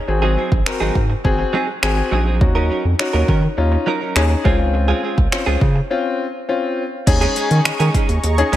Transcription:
0.08 G#1 C4 F#4 G#4, muted clean electric guitar stroke
0.22 F#3 C4 D#4 G#4
0.37 F#3 C4 D#4 G#4
0.52 A#1, kick
0.66 C4 F#4 A#4, finger snap, muted clean electric guitar stroke
0.80 G#1 F#3 C4 D#4 G#4
0.95 G#2, muted clean electric guitar stroke, kick
1.10 muted clean electric guitar stroke
1.24 G#1 C4 F#4 G#4, muted clean electric guitar stroke, kick
1.39 muted clean electric guitar stroke
1.53 F#3 C4 D#4 G#4
1.68 muted clean electric guitar stroke
1.82 G#1 C4 F#4 G#4, finger snap, muted clean electric guitar stroke
1.97 muted clean electric guitar stroke
2.11 A#1 F#3 C4 D#4 G#4
2.26 F#3 C4 D#4 G#4
2.41 D#2 C#4 D#4 F#4, muted clean electric guitar stroke, kick
2.55 F#3 C#4 D#4 A#4
2.70 F#3 C#4 D#4 A#4
2.85 F2
2.99 C#4 D#4 F#4, finger snap, muted clean electric guitar stroke
3.13 D#2 F#3 C#4 D#4 A#4
3.28 D#3 F#3 C#4 D#4 A#4, kick
3.43 muted clean electric guitar stroke
3.57 D#2 C#4 D#4 F4, muted clean electric guitar stroke
3.72 muted clean electric guitar stroke
3.86 F#3 C#4 D#4 A#4
4.01 F#3 C#4 D#4 A#4
4.16 D#2 C#4 D#4 G#4, finger snap
4.30 muted clean electric guitar stroke
4.44 C#2 G#3 C4 C#4 F4 G#4, kick
4.59 muted clean electric guitar stroke
4.74 muted clean electric guitar stroke
4.88 G#3 C4 F4 G#4
5.03 G#3 C4 F4 G#4
5.17 C#2, muted clean electric guitar stroke, kick
5.32 C4 C#4 F4, finger snap, muted clean electric guitar stroke
5.46 C#2 G#3 C4 F4 G#4
5.61 C#3, muted clean electric guitar stroke, kick
5.76 muted clean electric guitar stroke
5.90 C4 C#4 F4
6.49 C4 C#4 F4
7.07 D#2 C#4 D#4 G#4 D#5 A#5 C#6, muted clean electric guitar stroke, kick, closed hi-hat, crash
7.21 G#3 C#4 D#4 G#4, closed hi-hat
7.36 G#3 C#4 D#4 G#4, closed hi-hat
7.50 D#3, muted clean electric guitar stroke, closed hi-hat
7.65 D#3, finger snap, muted clean electric guitar stroke, closed hi-hat
7.79 D#3 G#3 C#4 D#4 G#4, closed hi-hat
7.94 G#3 C#4 D#4 G#4, kick, closed hi-hat
8.09 D#2, muted clean electric guitar stroke, closed hi-hat
8.23 D#2, muted clean electric guitar stroke, closed hi-hat
8.38 C#4 D#4 G#4, muted clean electric guitar stroke, closed hi-hat
8.52 C#2 G#3 C#4 D#4 G#4, closed hi-hat

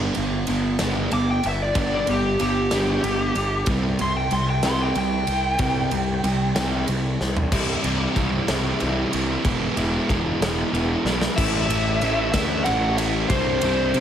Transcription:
Already playing: G3 B3 D4
0.15 G1 G3 B3, ride
0.47 G1 G3 B3, ride
0.79 G1 G3 B3 D4, snare, ride
1.11 G1 G3 B3 D6, ride
1.31 G5
1.43 G1 E5, ride
1.62 D5
1.75 G1 G3 B3 D4 D5, kick, ride
1.95 D5
2.07 G1 G3 B3 G4, ride
2.39 G1 G3 B3 G4, ride
2.71 G1 G3 B3 D4, snare, ride
3.03 G1 G3 B3, ride
3.35 G1, ride
3.66 C2 C3 G3 C4, kick, ride
3.99 C2 C3 G3 C6, ride
4.16 G5
4.31 C2 C3 G3 C6, ride
4.50 G5
4.63 C2 C3 G3 C4 C6, snare, ride
4.82 G5
4.95 C2 C3 G3 G5, ride
5.27 C2, ride
5.59 C2 C3 G3 C4, kick, ride
5.91 C2 C3 G3, ride
6.24 C2 C3 G3, ride
6.55 C2 C3 G3 C4, snare, ride
6.87 C2 C3 G3, ride
7.20 C2, snare
7.37 floor tom
7.52 C2 C3 E3 G3 C4 E4, kick, crash
7.83 C2 C3 E3 G3 C4 E4, ride
8.16 C2 C3 E3 G3 C4 E4, kick, ride
8.48 C2 C3 E3 G3 C4 E4, snare, ride
8.80 C2 C3 E3 G3 C4 E4, ride
9.11 C2 C3 E3 G3 C4 E4, ride
9.44 E1 E3 G#3 B3 E4, kick, ride
9.77 E1 E3 G#3 B3 E4, ride
10.09 E1 E3 G#3 B3 E4, kick, ride
10.41 E1 E3 G#3 B3 E4, snare, ride
10.73 E1 E3 G#3 B3 E4, ride
11.04 B1 E3 G#3 B3 E4, snare
11.21 snare
11.36 A1 A2 E3 A3 C#4 E4 E5, kick, crash
11.69 A1 A3 C#4 E4, ride
12.01 A1 E3 A3 C#4 E4, ride
12.32 D2 A3 C#4 E4 E5, kick, snare, ride
12.64 A1 E3 A3 C#4 E4 F#5, ride
12.97 A3 C#4 E4 E5, ride
13.28 C2 C3 G3 C4 D4 C5, kick, ride
13.61 C2 G3 C4 D4, ride
13.94 C3 G3 C4 D4, ride

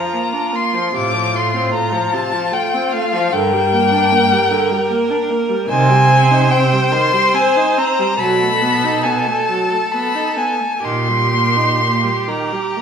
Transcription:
Already playing: F3 F4 A#5
0.13 A#3
0.33 D4
0.52 A#3 C6
0.73 F3
0.93 A2 C3 F4 D6
1.13 F3
1.35 A3 C6
1.53 C4
1.73 A3 A#5
1.92 F3
2.13 C3 A5
2.33 F3
2.52 A3 G5
2.74 C4
2.92 A3 F5
3.13 F3
3.32 G2 D3 A#4 G5
3.52 G3
3.72 A#3
3.92 D4
4.12 A#3
4.32 G3
4.51 D3
4.71 G3
4.90 A#3
5.10 D4
5.30 A#3
5.49 G3
5.69 C3 D#3 C5 G#5
5.89 G3
6.10 C4
6.31 D#4
6.51 C4 G5
6.72 G3
6.91 D#3 C6
7.12 G3
7.34 C4 G#5
7.56 D#4
7.78 C4 A#5
7.99 G3
8.18 B2 F#3 A4 B5
8.42 A3
8.61 B3
8.84 D#4
9.03 B3 G#5
9.27 A3
9.47 F#3 A5
9.72 A3
9.91 B3 B5
10.15 D#4
10.37 B3 G#5
10.60 A3
10.84 A#2 D#3 G4 C6
11.08 G3
11.33 A#3
11.56 D#4
11.80 A#3
12.03 G3
12.27 D#3 A#5
12.52 G3
12.77 A#3

